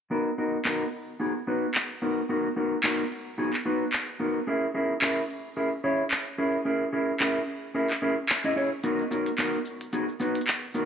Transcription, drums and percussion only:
0.65 clap loud
1.74 clap loud
2.84 clap loud
3.53 clap soft
3.93 clap loud
5.02 clap loud
6.11 clap loud
7.20 clap loud
7.90 clap soft
8.29 clap loud
8.83 closed hi-hat soft
8.83 shaker soft
8.99 shaker soft
9.12 shaker medium
9.26 closed hi-hat medium
9.26 shaker soft
9.38 clap loud
9.38 closed hi-hat soft
9.38 shaker soft
9.53 shaker soft
9.65 shaker medium
9.81 closed hi-hat medium
9.81 shaker soft
9.93 closed hi-hat soft
9.93 shaker soft
10.08 shaker soft
10.20 shaker medium
10.35 closed hi-hat medium
10.35 shaker soft
10.41 closed hi-hat soft
10.47 clap loud
10.47 shaker soft
10.62 shaker soft
10.74 shaker medium

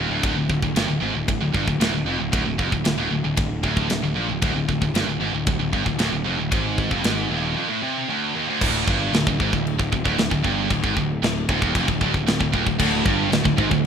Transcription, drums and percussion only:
0.23 kick loud
0.23 ride bell medium
0.50 kick medium
0.62 kick medium
0.76 snare loud
0.76 ride bell medium
1.28 kick loud
1.28 ride bell medium
1.54 kick medium
1.68 kick medium
1.81 snare loud
1.81 ride bell medium
2.33 kick loud
2.33 ride bell medium
2.59 kick medium
2.72 kick medium
2.85 snare loud
2.85 ride bell medium
3.37 kick loud
3.37 ride bell medium
3.64 kick medium
3.77 kick medium
3.90 snare loud
3.90 ride bell medium
4.42 kick loud
4.42 ride bell medium
4.69 kick medium
4.82 kick medium
4.95 snare loud
4.95 ride bell medium
5.47 kick loud
5.47 ride bell medium
5.73 kick medium
5.86 kick medium
5.99 snare loud
5.99 ride bell medium
6.52 kick loud
6.52 ride bell medium
6.78 kick medium
6.91 kick medium
7.04 snare loud
7.04 ride bell medium
8.61 kick loud
8.61 crash loud
8.61 china medium
8.88 kick loud
9.14 snare loud
9.14 china medium
9.27 kick loud
9.40 kick medium
9.53 kick loud
9.67 china medium
9.79 kick medium
9.93 kick medium
10.05 kick medium
10.18 snare loud
10.18 china medium
10.31 kick medium
10.44 kick medium
10.71 kick loud
10.71 china medium
10.84 kick medium
10.97 kick medium
11.23 snare loud
11.23 china medium
11.49 kick loud
11.62 kick loud
11.75 kick loud
11.75 china medium
11.88 kick loud
12.01 kick medium
12.14 kick medium
12.27 snare loud
12.27 china medium
12.41 kick medium
12.54 kick medium
12.67 kick medium
12.80 kick loud
12.80 china medium
12.80 crash loud
13.06 kick loud
13.32 snare loud
13.32 china medium
13.45 kick loud
13.58 kick medium
13.71 kick loud

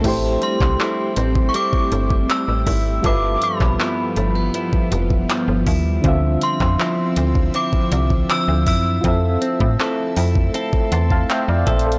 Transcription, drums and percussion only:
0.04 kick loud
0.04 closed hi-hat medium
0.04 crash loud
0.42 closed hi-hat medium
0.60 kick medium
0.60 clap medium
0.81 clap loud
1.16 closed hi-hat medium
1.35 kick medium
1.54 closed hi-hat medium
1.73 kick loud
1.92 closed hi-hat medium
2.10 kick medium
2.30 clap loud
2.30 closed hi-hat medium
2.67 kick medium
2.67 open hi-hat medium
3.04 kick loud
3.04 closed hi-hat medium
3.42 closed hi-hat medium
3.60 kick medium
3.60 clap medium
3.80 clap loud
4.16 closed hi-hat medium
4.54 closed hi-hat medium
4.73 kick loud
4.92 closed hi-hat medium
5.10 kick medium
5.30 clap loud
5.30 closed hi-hat medium
5.67 kick medium
5.67 open hi-hat medium
6.04 kick loud
6.04 closed hi-hat medium
6.41 closed hi-hat medium
6.60 kick medium
6.60 clap medium
6.80 clap loud
7.16 closed hi-hat medium
7.35 kick medium
7.54 closed hi-hat medium
7.73 kick loud
7.92 closed hi-hat medium
8.10 kick loud
8.30 clap loud
8.30 closed hi-hat medium
8.67 kick medium
8.67 open hi-hat medium
9.04 kick loud
9.04 closed hi-hat medium
9.42 closed hi-hat medium
9.60 kick medium
9.80 clap loud
10.16 open hi-hat medium
10.35 kick medium
10.54 closed hi-hat medium
10.73 kick loud
10.92 closed hi-hat medium
11.10 kick medium
11.30 clap loud
11.30 closed hi-hat medium
11.67 kick medium
11.67 closed hi-hat medium
11.67 open hi-hat medium
11.79 closed hi-hat medium
11.92 closed hi-hat medium

